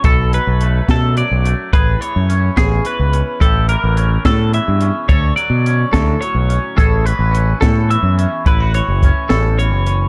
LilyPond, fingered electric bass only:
\new Staff \with { instrumentName = "Fingered electric bass" } { \clef bass \time 6/8 \key a \major \tempo 4. = 71 b,,8. b,,8. b,8. b,,8 r16 | a,,8 r16 fis,8. a,,8 r16 cis,8 r16 | a,,8. a,,8. a,8. g,8 r16 | d,8 r16 b,8. d,8 r16 b,,8 r16 |
a,,8. a,,8. a,8. fis,8 r16 | a,,8. fis,,8 r16 a,,8. fis,,8. | }